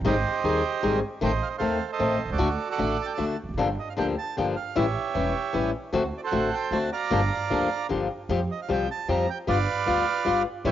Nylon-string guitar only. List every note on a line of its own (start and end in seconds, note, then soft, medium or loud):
0.04 0.14 D#3 medium
0.04 0.14 G3 medium
0.04 0.14 C4 medium
0.04 0.14 D#4 medium
0.04 0.14 G#4 medium
0.44 0.61 D#3 medium
0.44 0.61 G3 medium
0.44 0.61 C4 medium
0.44 0.61 D#4 medium
0.44 0.62 G#4 medium
0.83 1.00 D#3 medium
0.83 1.00 G3 medium
0.83 1.00 C4 medium
0.83 1.00 D#4 medium
0.83 1.00 G#4 medium
1.21 1.31 D#3 medium
1.21 1.31 A3 medium
1.21 1.31 C4 medium
1.60 1.77 D#3 medium
1.60 1.78 A3 medium
1.60 1.78 C4 medium
1.99 2.17 D#3 medium
1.99 2.17 A3 medium
1.99 2.17 C4 medium
2.38 2.48 D3 medium
2.38 2.48 A3 medium
2.38 2.48 D4 medium
2.38 2.48 F#4 medium
2.78 2.95 D3 medium
2.78 2.96 A3 medium
2.78 2.96 D4 medium
2.78 2.96 F#4 medium
3.18 3.35 D3 medium
3.18 3.35 A3 medium
3.18 3.35 D4 medium
3.18 3.35 F#4 medium
3.58 3.67 D3 medium
3.58 3.67 F3 medium
3.58 3.67 A#3 medium
3.58 3.68 D4 medium
3.58 3.68 G4 medium
3.97 4.14 D3 medium
3.97 4.14 F3 medium
3.97 4.15 A#3 medium
3.97 4.15 D4 medium
3.97 4.15 G4 medium
4.37 4.54 D3 medium
4.37 4.54 F3 medium
4.37 4.54 A#3 medium
4.37 4.54 D4 medium
4.37 4.54 G4 medium
4.75 4.85 E3 medium
4.75 4.85 G3 medium
4.75 4.85 C#4 medium
4.75 4.85 E4 medium
5.14 5.32 E3 soft
5.14 5.32 G3 medium
5.14 5.32 C#4 medium
5.14 5.32 E4 medium
5.53 5.70 E3 medium
5.53 5.71 G3 medium
5.53 5.71 C#4 medium
5.53 5.71 E4 medium
5.93 6.02 D3 medium
5.93 6.02 A3 medium
5.93 6.02 C4 medium
5.93 6.02 F#4 medium
6.32 6.49 D3 medium
6.32 6.49 A3 medium
6.32 6.49 C4 medium
6.32 6.49 F#4 medium
6.72 6.89 D3 medium
6.72 6.89 A3 medium
6.72 6.89 C4 medium
6.72 6.89 F#4 medium
7.11 7.20 D3 medium
7.11 7.20 F3 medium
7.11 7.20 A#3 medium
7.11 7.20 D4 medium
7.11 7.20 G4 medium
7.50 7.67 D3 medium
7.50 7.67 F3 medium
7.50 7.68 A#3 medium
7.50 7.68 D4 medium
7.50 7.68 G4 medium
7.89 8.07 D3 medium
7.89 8.07 F3 medium
7.89 8.07 A#3 medium
7.89 8.07 D4 medium
7.89 8.07 G4 medium
8.29 8.38 F3 medium
8.29 8.39 G3 medium
8.29 8.39 C4 medium
8.29 8.39 G4 medium
8.69 8.86 F3 medium
8.69 8.86 G3 medium
8.69 8.86 C4 medium
8.69 8.86 G4 medium
9.08 9.25 F3 medium
9.08 9.25 G3 medium
9.08 9.25 C4 medium
9.08 9.26 G4 medium
9.47 9.56 G3 medium
9.47 9.56 B3 medium
9.47 9.57 F4 medium
9.86 10.03 G3 medium
9.86 10.04 B3 medium
9.86 10.04 F4 medium
10.25 10.42 G3 medium
10.25 10.43 B3 medium
10.25 10.43 F4 medium
10.65 10.71 E3 medium
10.65 10.71 G3 medium
10.65 10.71 C#4 medium
10.65 10.71 E4 medium